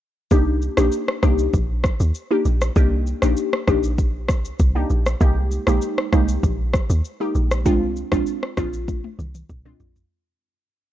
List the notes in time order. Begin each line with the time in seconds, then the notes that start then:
0.31 C2 A#3 D4 D#4 G4, kick, shaker
0.62 shaker
0.77 A#1 A#3 D4 D#4 G4, cross-stick, shaker
0.92 shaker
1.08 cross-stick
1.23 C2 A#3 D4 D#4 G4, kick, cross-stick, shaker
1.39 shaker
1.54 A#1, kick, shaker
1.84 kick, cross-stick, shaker
2.00 D#2, shaker
2.15 shaker
2.31 A#3 D4 D#4 G4
2.45 A#1, shaker
2.61 cross-stick, shaker
2.76 C2 A#3 D4 D#4 G4, kick, shaker
3.07 shaker
3.22 A#1 A#3 D4 D#4 G4, cross-stick, shaker
3.37 shaker
3.53 cross-stick
3.68 A#1 A#3 D4 D#4 G4, kick, cross-stick, shaker
3.83 shaker
3.98 kick, shaker
4.28 C2, kick, cross-stick, shaker
4.45 shaker
4.59 C2, kick, shaker
4.75 A#3 D4 D#4 G4
4.90 A#1, shaker
5.06 cross-stick, shaker
5.20 C2 G#3 A#3 D#4 G4, kick, shaker
5.51 shaker
5.67 A#1 G#3 A#3 D#4 G4, cross-stick, shaker
5.82 shaker
5.98 cross-stick
6.13 C2 G#3 A#3 D#4 G4, kick, cross-stick, shaker
6.28 shaker
6.43 A#1, kick, shaker
6.74 kick, cross-stick, shaker
6.90 D#2, shaker
7.05 shaker
7.20 G#3 A#3 D#4 G4
7.35 A#1, shaker
7.51 cross-stick, shaker
7.65 C2 G#3 C4 D4 F4, kick, shaker
7.96 shaker
8.12 A#1 G#3 C4 D4 F4, kick, cross-stick, shaker
8.26 shaker
8.43 cross-stick
8.57 A#1 G#3 C4 D4 F4, kick, cross-stick, shaker
8.73 shaker
8.88 kick, high tom, shaker
9.04 high tom
9.19 C2, mid tom, shaker
9.35 mid tom, shaker
9.49 C2, kick, mid tom, shaker
9.65 G#3 C4 D4 F4, mid tom
9.80 A#1, floor tom, shaker
9.96 floor tom, shaker